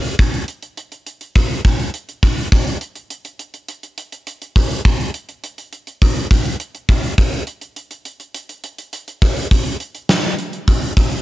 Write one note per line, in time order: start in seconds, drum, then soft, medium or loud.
0.04 closed hi-hat medium
0.19 kick loud
0.19 closed hi-hat medium
0.34 closed hi-hat soft
0.48 closed hi-hat medium
0.62 closed hi-hat soft
0.77 closed hi-hat medium
0.92 closed hi-hat medium
1.06 closed hi-hat medium
1.21 closed hi-hat soft
1.35 kick medium
1.35 closed hi-hat medium
1.50 closed hi-hat soft
1.65 kick medium
1.65 closed hi-hat medium
1.79 closed hi-hat soft
1.94 closed hi-hat medium
2.09 closed hi-hat soft
2.23 kick medium
2.23 closed hi-hat medium
2.37 closed hi-hat medium
2.52 kick loud
2.52 closed hi-hat medium
2.67 closed hi-hat medium
2.81 closed hi-hat medium
2.96 closed hi-hat soft
3.10 closed hi-hat medium
3.25 closed hi-hat medium
3.39 closed hi-hat medium
3.54 closed hi-hat soft
3.69 closed hi-hat medium
3.83 closed hi-hat soft
3.98 closed hi-hat medium
4.12 closed hi-hat soft
4.27 closed hi-hat medium
4.42 closed hi-hat soft
4.56 kick medium
4.56 closed hi-hat medium
4.70 closed hi-hat medium
4.85 kick loud
4.85 closed hi-hat medium
5.00 closed hi-hat soft
5.14 closed hi-hat medium
5.29 closed hi-hat soft
5.44 closed hi-hat medium
5.58 closed hi-hat medium
5.73 closed hi-hat medium
5.87 closed hi-hat soft
6.02 kick medium
6.02 closed hi-hat medium
6.16 closed hi-hat soft
6.31 kick medium
6.31 closed hi-hat medium
6.45 closed hi-hat soft
6.60 closed hi-hat medium
6.75 closed hi-hat soft
6.89 kick medium
6.89 closed hi-hat medium
7.03 closed hi-hat medium
7.18 kick loud
7.18 closed hi-hat medium
7.33 closed hi-hat soft
7.47 closed hi-hat medium
7.61 closed hi-hat medium
7.76 closed hi-hat medium
7.91 closed hi-hat medium
8.05 closed hi-hat medium
8.20 closed hi-hat soft
8.35 closed hi-hat medium
8.49 closed hi-hat soft
8.64 closed hi-hat medium
8.78 closed hi-hat soft
8.93 closed hi-hat medium
9.08 closed hi-hat soft
9.22 kick medium
9.22 closed hi-hat medium
9.36 closed hi-hat medium
9.51 kick loud
9.51 closed hi-hat medium
9.66 closed hi-hat soft
9.80 closed hi-hat medium
9.95 closed hi-hat soft
10.09 snare loud
10.24 closed hi-hat medium
10.39 closed hi-hat medium
10.53 closed hi-hat soft
10.68 kick medium
10.68 closed hi-hat medium
10.82 closed hi-hat soft
10.97 kick medium
10.97 closed hi-hat medium
11.11 closed hi-hat soft